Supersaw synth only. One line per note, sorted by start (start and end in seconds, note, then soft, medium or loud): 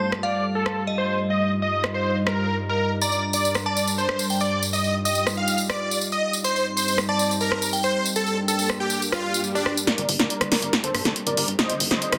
0.00 0.12 C5 medium
0.23 0.44 D5 medium
0.55 0.84 A4 medium
0.98 1.19 C5 medium
1.30 1.51 D#5 medium
1.62 1.84 D#5 medium
1.94 2.16 C5 medium
2.27 2.55 A#4 medium
2.69 2.91 A#4 medium
3.02 3.23 D5 medium
3.34 3.55 D5 medium
3.66 3.87 D5 medium
3.98 4.26 C5 loud
4.41 4.62 D5 medium
4.73 4.94 D#5 medium
5.05 5.27 D#5 medium
5.37 5.59 F5 medium
5.69 5.98 D5 medium
6.12 6.34 D#5 medium
6.44 6.66 C5 medium
6.77 6.98 C5 medium
7.09 7.30 D5 medium
7.41 7.69 A#4 medium
7.84 8.05 C5 medium
8.16 8.37 A4 loud
8.48 8.69 A4 medium
8.80 9.02 G4 medium
9.12 9.41 F4 medium
9.55 9.77 D4 medium
9.87 10.09 A#4 medium
9.87 10.09 D5 loud
10.20 10.41 A#4 medium
10.20 10.41 D5 medium
10.52 10.73 A#4 medium
10.52 10.73 D5 medium
10.84 11.12 A4 medium
10.84 11.12 C5 loud
11.27 11.48 A#4 medium
11.27 11.48 D5 medium
11.59 11.80 C5 medium
11.59 11.80 D#5 medium
11.91 12.12 C5 medium
11.91 12.12 D#5 loud